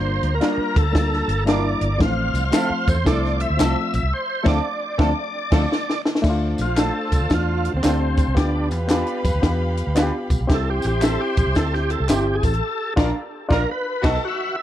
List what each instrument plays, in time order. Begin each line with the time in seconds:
Already playing: fingered electric bass G1, reed electric piano G3 A#3 D4 F4, violin section A#3 A#5, tonewheel organ C5
0.23 fingered electric bass D2, closed hi-hat
0.35 tonewheel organ A#4
0.40 reed electric piano G3 A#3 D4 F4, clean electric guitar D4 F4 A#4, snare, closed hi-hat
0.58 muted fingered electric bass stroke
0.76 fingered electric bass D2, tonewheel organ A4, kick, closed hi-hat
0.92 reed electric piano G3 A#3 D4 F4, kick, snare, closed hi-hat
1.13 snare
1.28 fingered electric bass G1, closed hi-hat
1.45 reed electric piano G3 A#3 D4 E4, clean electric guitar D4 F4 A#4, tonewheel organ D5, snare, closed hi-hat
1.81 fingered electric bass G1, closed hi-hat
1.98 fingered electric bass A1, reed electric piano E3 F3 A3 C4, violin section C5 C6, tonewheel organ F5, kick, snare, closed hi-hat
2.34 fingered electric bass C2, closed hi-hat, tambourine
2.45 tonewheel organ F5
2.51 reed electric piano F3 A3 C4 F4, horn section F3 E4 A4, clean electric guitar C4 E4 A4, snare, clap, closed hi-hat, tambourine
2.70 muted fingered electric bass stroke
2.88 fingered electric bass E2, horn section F3 E4 A4, tonewheel organ C5, kick, closed hi-hat, tambourine
3.05 fingered electric bass C2, reed electric piano F3 A3 C4 E4, horn section F3 E4 A4, tonewheel organ D5, kick, snare, closed hi-hat, tambourine
3.25 snare
3.40 tonewheel organ E5, closed hi-hat
3.50 fingered electric bass D2
3.57 fingered electric bass C2, reed electric piano F3 A3 C4 E4, clean electric guitar C4 E4 A4, snare, clap, closed hi-hat, tambourine
3.65 reed electric piano F4
3.93 fingered electric bass A#1, tonewheel organ E5, closed hi-hat, tambourine
4.03 fingered electric bass C2
4.13 tonewheel organ C5
4.43 fingered electric bass D2, reed electric piano F3 A3 C4 D4, horn section F3 D4 A4, clean electric guitar C4 F4, violin section D5 D6, kick, snare, crash
4.48 clean electric guitar A4, tonewheel organ D5
4.98 fingered electric bass D2, horn section F3 D4 A4, reed electric piano F3 A3 C4 D4, clean electric guitar C4 F4 A4, violin section A4 A5, kick, snare
5.51 fingered electric bass D2, reed electric piano F3 A3 C4 D4, horn section F3 D4 A4, clean electric guitar C4 F4 A4, violin section A4 A5, kick, snare, crash
5.72 snare
5.89 snare
6.05 snare
6.15 snare
6.22 fingered electric bass D2, reed electric piano A3 D4 E4, horn section A3 F4 C5, violin section F4 D5 A5, kick, snare, crash, tambourine
6.30 reed electric piano F4
6.58 fingered electric bass A#1, tonewheel organ F4, closed hi-hat, tambourine
6.76 reed electric piano A3 D4 F4, clean electric guitar D4 F4 A4, tonewheel organ A4, snare, clap, closed hi-hat, tambourine
7.12 fingered electric bass C2, kick, closed hi-hat, tambourine
7.21 fingered electric bass D2
7.30 fingered electric bass E2, reed electric piano A3 D4 F4, tonewheel organ F4, kick, snare, closed hi-hat, tambourine
7.65 closed hi-hat
7.74 fingered electric bass D2, tonewheel organ C4
7.82 fingered electric bass D2, reed electric piano A3 D4 G4, clean electric guitar D4 F4 A4, snare, clap, closed hi-hat, tambourine
8.17 kick, closed hi-hat, tambourine
8.28 fingered electric bass C2
8.35 fingered electric bass D2, horn section G3 F4 B4, reed electric piano B3 F4 G4, tonewheel organ D4, violin section G4 F5 B5, kick, snare, closed hi-hat, tambourine
8.71 fingered electric bass E2, closed hi-hat, tambourine
8.88 reed electric piano B3 F4 G4, clean electric guitar D4 F4 B4, snare, clap, closed hi-hat, tambourine
9.07 closed hi-hat
9.24 fingered electric bass F2, kick, closed hi-hat, tambourine
9.34 fingered electric bass D2
9.42 fingered electric bass E2, reed electric piano B3 F4 G4, kick, snare, closed hi-hat, tambourine
9.77 closed hi-hat, tambourine
9.87 fingered electric bass D2
9.95 reed electric piano B3 F4 F#4, clean electric guitar D4 F4 B4, snare, clap, closed hi-hat, tambourine
10.03 reed electric piano G4
10.30 fingered electric bass B1, kick, closed hi-hat, tambourine
10.41 fingered electric bass B1
10.47 fingered electric bass C2, horn section G3 E4 C5, reed electric piano C4 E4 G4, violin section G4 E5 C6, kick, snare, closed hi-hat, tambourine
10.54 tonewheel organ A4
10.70 tonewheel organ G4
10.82 fingered electric bass A1, closed hi-hat, tambourine
10.87 tonewheel organ G4
11.02 reed electric piano C4 E4 G4, clean electric guitar E4 G4 C5, tonewheel organ A4, snare, clap, closed hi-hat, tambourine
11.21 tonewheel organ G4
11.37 fingered electric bass A#1, tonewheel organ G4, kick, closed hi-hat, tambourine
11.47 fingered electric bass C2
11.55 fingered electric bass D2, reed electric piano C4 E4 G4, tonewheel organ A4, kick, snare, closed hi-hat, tambourine
11.74 tonewheel organ G4, snare
11.90 tonewheel organ A4, closed hi-hat
12.00 fingered electric bass C2
12.08 fingered electric bass G1, reed electric piano C4 E4 G4, clean electric guitar E4 G4 C5, tonewheel organ G4, snare, clap, closed hi-hat, tambourine
12.35 tonewheel organ G#4
12.43 fingered electric bass A1, tonewheel organ A4, kick, closed hi-hat, tambourine
12.53 closed hi-hat
12.96 fingered electric bass A#1, horn section F3 D4 A#4, reed electric piano D4 F4, clean electric guitar D4 F4 A#4, violin section F4 D5 A#5, kick, snare, crash
13.04 reed electric piano A#4
13.48 fingered electric bass A#1, horn section F3 D4 A#4, reed electric piano D4 F4 A#4, clean electric guitar D4 F4 A#4, violin section F4 D5 A#5, kick, snare
13.53 tonewheel organ A#4
13.71 tonewheel organ B4
14.02 fingered electric bass B1, horn section D#3 B3 F#4, reed electric piano B3 D#4, clean electric guitar B3 D#4 A4, violin section F#4 D#5 A5, tonewheel organ A4, kick, snare, crash
14.11 reed electric piano A4
14.25 tonewheel organ F#4 E5